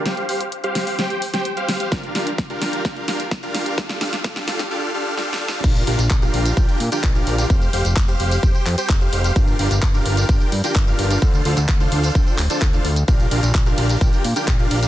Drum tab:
CC |------------------------------------------------|------------------------------------------------|------------------------------------------------|x-----------------------------------------------|
RD |------------------------------------------------|------------------------------------------------|------------------------------------------------|------------------------------------------------|
HH |x--x--o--x--x--x--o--o--x--x--o--x--x--x--o--x--|x--x--o--x--x--x--o--x--x--x--o--x--x--x--o--x--|x--x--o--x--x--x--o--o--------------------------|x--x--o--x--x--x--o--x--x--x--o--x--x--x--o--x--|
TB |------------------------------------------------|------------------------------------------------|------------------------------------------------|x--x-----x--x--x-----x--x--x-----x--x--x-----x--|
CP |------------------------------------------------|------------------------------------------------|------------------------------------------------|------------x-----------------------x-----------|
SD |o-----------------o-----o--------o--------o-----|o-----o-----o-----o-----o-----o-----o-----o-----|o--o--o--o--o--o--o--o--------------o---o---o---|------------------------------------------------|
BD |------------------------------------------------|o-----------o-----------o-----------o-----------|o-----------o-----------------------------------|o-----------o-----------o-----------o-----------|

CC |------------------------------------------------|------------------------------------------------|------------------------------------------------|------------------------------------------------|
RD |------------------------------------------------|------------------------------------------------|------------------------------------------------|------x-----------x-----------x-----------x-----|
HH |x--x--o--x--x--x--o--o--x--x--o--x--x--x--o--x--|x--x--o--x--x--x--o--x--x--x--o--x--x--x--o--x--|x--x--o--x--x--x--o--o--x--x--o--x--x--x--o--x--|x--x--o--x--x--x--o--x--x--x--o--x--x--x--o--x--|
TB |x--x-----x--x--x-----x--x--x-----x--x--x-----x--|x--x-----x--x--x-----x--x--x-----x--x--x-----x--|x--x-----x--x--x-----x--x--x-----x-----x-----x--|x--x-----x--x--x-----x--x--x-----x--x--x-----x--|
CP |------------x-----------------x-----x-----------|------------x-----------------------x-----------|------------x-----------------x-----x-----------|------------x-----------------------x-----------|
SD |------------------------------------------------|------------------------------------------------|------------------------------------------------|------------------------------------------------|
BD |o-----------o-----------o-----------o-----------|o-----------o-----------o-----------o-----------|o-----------o-----------o-----------o-----------|o-----------o-----------o-----------o-----------|